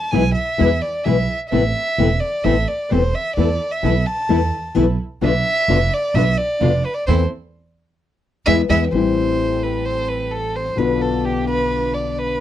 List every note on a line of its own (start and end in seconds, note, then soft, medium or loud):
0.00 0.13 A5 medium
0.11 0.33 B1 medium
0.11 0.21 B2 medium
0.11 0.22 E3 medium
0.11 0.22 G#3 medium
0.11 0.22 B3 medium
0.11 0.22 E4 medium
0.11 0.33 E4 medium
0.11 0.33 G#4 medium
0.11 0.33 B4 medium
0.11 0.34 G#5 medium
0.35 0.83 E5 medium
0.58 0.79 E2 loud
0.58 0.68 B2 medium
0.58 0.68 E3 medium
0.58 0.68 G#3 medium
0.58 0.68 B3 medium
0.58 0.68 E4 medium
0.58 0.79 E4 medium
0.58 0.79 G#4 medium
0.58 0.79 B4 medium
0.82 1.07 D5 medium
1.05 1.26 B1 medium
1.05 1.15 B2 medium
1.05 1.15 E3 medium
1.05 1.15 G#3 medium
1.05 1.15 B3 medium
1.05 1.25 E4 medium
1.05 1.15 E4 medium
1.05 1.25 G#4 medium
1.05 1.25 B4 medium
1.05 1.40 E5 medium
1.50 1.72 A1 medium
1.50 1.61 C3 medium
1.50 1.61 E3 medium
1.50 1.61 A3 medium
1.50 1.61 B3 medium
1.50 1.72 C4 medium
1.50 1.62 E4 medium
1.50 1.72 A4 medium
1.50 1.72 B4 medium
1.50 2.22 E5 medium
1.98 2.18 E1 medium
1.98 2.07 C3 medium
1.98 2.08 E3 medium
1.98 2.08 A3 medium
1.98 2.08 B3 medium
1.98 2.18 C4 medium
1.98 2.08 E4 medium
1.98 2.18 A4 medium
1.98 2.18 B4 medium
2.20 2.46 D5 medium
2.44 2.64 A1 medium
2.44 2.54 C3 medium
2.44 2.54 E3 medium
2.44 2.54 A3 medium
2.44 2.54 B3 medium
2.44 2.64 C4 medium
2.44 2.54 E4 medium
2.44 2.64 A4 medium
2.44 2.64 B4 medium
2.44 2.70 E5 medium
2.68 2.93 D5 medium
2.90 3.11 E1 medium
2.90 3.00 C3 medium
2.90 3.00 E3 medium
2.90 3.01 A3 medium
2.90 3.01 B3 medium
2.90 3.10 C4 medium
2.90 3.01 E4 medium
2.90 3.10 A4 medium
2.90 3.11 B4 medium
2.90 3.17 C5 medium
3.15 3.36 E5 medium
3.37 3.57 E2 medium
3.37 3.46 E3 medium
3.37 3.46 A3 medium
3.37 3.46 B3 medium
3.37 3.47 E4 medium
3.37 3.57 E4 medium
3.37 3.57 A4 medium
3.37 3.58 B4 medium
3.37 3.74 D5 medium
3.72 4.08 E5 medium
3.83 4.03 B1 medium
3.83 3.92 E3 medium
3.83 3.92 A3 medium
3.83 3.93 B3 medium
3.83 4.03 E4 medium
3.83 3.93 E4 medium
3.83 4.03 A4 medium
3.83 4.03 B4 medium
4.07 4.76 A5 medium
4.29 4.49 E2 loud
4.29 4.38 E3 medium
4.29 4.38 A3 medium
4.29 4.39 B3 medium
4.29 4.39 E4 loud
4.29 4.49 E4 medium
4.29 4.50 A4 medium
4.29 4.50 B4 medium
4.75 4.96 B1 medium
4.75 4.84 E3 medium
4.75 4.85 A3 medium
4.75 4.85 B3 medium
4.75 4.95 E4 medium
4.75 4.85 E4 medium
4.75 4.96 A4 medium
4.75 4.95 B4 medium
5.21 5.41 B1 medium
5.21 5.31 B2 medium
5.21 5.31 D3 medium
5.21 5.31 B3 medium
5.21 5.41 D4 medium
5.21 5.31 D4 medium
5.21 5.42 F4 medium
5.21 5.31 F4 medium
5.21 5.42 B4 medium
5.21 5.95 E5 loud
5.68 5.88 F1 medium
5.68 5.77 B2 medium
5.68 5.77 D3 medium
5.68 5.78 B3 medium
5.68 5.88 D4 medium
5.68 5.78 D4 medium
5.68 5.88 F4 medium
5.68 5.78 F4 medium
5.68 5.88 B4 medium
5.93 6.17 D5 loud
6.14 6.34 B1 loud
6.14 6.24 B2 medium
6.14 6.24 D3 medium
6.14 6.24 B3 loud
6.14 6.34 D4 medium
6.14 6.24 D4 medium
6.14 6.34 F4 medium
6.14 6.24 F4 medium
6.14 6.34 B4 medium
6.14 6.40 E5 loud
6.38 6.87 D5 medium
6.60 6.80 F1 medium
6.60 6.70 B2 medium
6.60 6.70 D3 medium
6.60 6.70 B3 medium
6.60 6.80 D4 medium
6.60 6.70 D4 medium
6.60 6.80 F4 medium
6.60 6.71 F4 medium
6.60 6.80 B4 medium
6.86 6.96 B4 medium
6.94 7.06 D5 medium
7.07 7.25 E2 medium
7.07 7.23 E3 medium
7.07 7.23 A3 medium
7.07 7.23 C4 medium
7.07 7.23 E4 medium
7.07 7.23 A4 medium
7.07 7.22 C5 medium
8.46 8.64 E2 medium
8.46 8.62 G#3 medium
8.46 8.62 B3 medium
8.46 8.62 E4 medium
8.46 8.62 G#4 medium
8.46 8.61 E5 medium
8.69 8.87 E2 medium
8.69 8.85 G#3 medium
8.69 8.84 B3 medium
8.69 8.85 B3 medium
8.69 8.84 E4 medium
8.69 8.85 E4 medium
8.69 8.84 G#4 medium
8.69 8.85 E5 medium
8.92 10.69 A1 medium
8.92 10.76 E3 medium
8.92 10.77 G3 medium
8.92 10.69 C4 soft
8.92 10.78 C4 medium
8.92 10.79 E4 medium
8.92 10.69 G4 soft
8.92 10.69 A4 medium
8.92 9.65 C5 medium
9.64 9.87 B4 medium
9.85 10.10 C5 medium
10.09 10.33 B4 medium
10.32 10.57 A4 medium
10.55 10.79 C5 medium
10.76 12.40 B1 medium
10.76 12.40 B2 medium
10.76 12.40 D3 medium
10.76 12.40 B3 medium
10.76 12.40 D4 medium
10.76 12.40 F4 soft
10.76 12.40 F4 medium
10.76 12.40 B4 medium
10.76 11.03 B4 medium
11.02 11.26 A4 medium
11.25 11.47 G4 medium
11.47 11.96 B4 loud
11.94 12.20 D5 medium
12.19 12.40 B4 medium